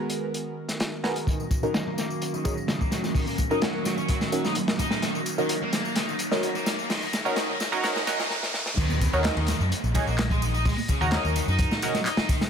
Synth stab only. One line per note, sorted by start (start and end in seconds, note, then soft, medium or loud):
0.00 0.54 B3 loud
0.00 0.55 F#4 medium
0.00 0.55 G#4 medium
0.00 0.55 A#4 loud
1.04 1.14 B3 medium
1.04 1.14 F#4 medium
1.04 1.14 G#4 medium
1.04 1.14 A#4 medium
1.63 1.79 C#4 medium
1.63 1.79 D#4 medium
1.63 1.79 F#4 medium
1.63 1.79 A#4 loud
2.45 2.55 C#4 medium
2.45 2.55 D#4 medium
2.45 2.55 F#4 medium
2.45 2.55 G#4 medium
3.51 4.30 C#4 loud
3.51 4.30 D#4 medium
3.51 4.30 F#4 medium
3.51 4.30 A#4 loud
4.32 4.43 C#4 medium
4.32 4.43 D#4 medium
4.32 4.43 F#4 medium
4.32 4.43 A#4 loud
5.38 5.54 C#4 medium
5.38 5.54 D#4 medium
5.38 5.54 F#4 medium
5.38 5.54 A#4 loud
6.31 6.48 C#4 medium
6.31 6.48 D#4 medium
6.31 6.48 F#4 medium
6.31 6.48 A#4 loud
7.25 7.35 C#4 medium
7.25 7.35 D#4 medium
7.25 7.35 F#4 medium
7.25 7.35 A#4 loud
7.72 7.82 C#4 medium
7.72 7.82 D#4 medium
7.72 7.82 F#4 medium
7.72 7.82 A#4 loud
7.84 8.00 C#4 loud
7.84 8.00 D#4 medium
7.84 8.00 F#4 medium
7.84 8.00 A#4 loud
8.07 8.24 C#4 loud
8.07 8.24 D#4 medium
8.07 8.24 F#4 medium
8.07 8.24 A#4 loud
9.13 9.29 C#4 loud
9.13 9.29 D#4 medium
9.13 9.29 F#4 medium
9.13 9.29 A#4 loud
9.95 10.05 C#4 medium
9.95 10.05 D#4 medium
9.95 10.05 F#4 medium
9.95 10.05 G#4 medium
11.01 11.80 C#4 loud
11.01 11.80 D#4 medium
11.01 11.80 F#4 medium
11.01 11.80 A#4 loud
11.83 11.93 C#4 medium
11.83 11.93 D#4 medium
11.83 11.93 F#4 medium
11.83 11.93 A#4 loud